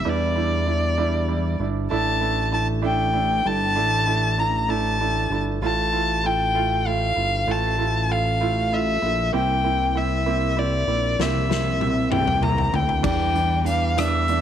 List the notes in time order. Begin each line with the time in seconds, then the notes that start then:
0.00 E5
0.05 E2 G3 D4 E4
0.09 D5
0.36 G3 D4 E4
0.66 G3 D4 E4
0.98 G3 D4 E4
1.28 G3 D4 E4
1.60 G1 G3 D4 E4
1.90 A1 A3 D4 E4 A5
2.21 A3 D4 E4
2.51 A3 D4 E4 A5
2.82 A3 D4 E4 G5
3.13 A3 D4 E4
3.45 G1 A3 D4 E4 A5
3.76 A1 A3 D4 E4
4.06 A3 D4 E4
4.38 A3 D4 E4 A#5
4.69 A3 D4 E4 A5
5.00 A3 D4 E4
5.30 G1 A3 D4 E4
5.61 A1 A3 E4 F4 A5
5.93 A3 E4 F4
6.23 A3 E4 F4 G5
6.54 A3 E4 F4
6.86 A3 E4 F4 F5
7.16 G1 A3 E4 F4
7.47 A1 A3 E4 F4 A5
7.78 A3 E4 F4
8.09 A3 E4 F4 F5
8.41 A3 E4 F4
8.72 A3 E4 F4 E5
9.02 A#1 A3 E4 F4
9.33 C2 A#3 C4 E4 G5
9.64 A#3 C4 E4
9.95 A#3 C4 E4 E5
10.26 A#3 C4 E4
10.56 A#3 C4 E4 D5
10.87 A#1 A#3 C4 E4
11.19 C2 A#3 C4 E4 E5, snare
11.49 A#3 C4 E4, snare
11.80 A#3 C4 E4, high tom
12.11 A#3 C4 E4 G5, mid tom
12.28 mid tom
12.42 A#3 C4 E4 A#5, mid tom
12.58 floor tom
12.72 D2 A#3 C4 E4 G5, floor tom
12.89 floor tom
13.03 E2 E3 G3 D4 G5, kick, crash
13.34 E3 G3 D4, closed hi-hat
13.64 E3 G3 D4 F5, closed hi-hat
13.97 E3 G3 D4 E5, cross-stick, closed hi-hat
14.28 E3 G3 D4, closed hi-hat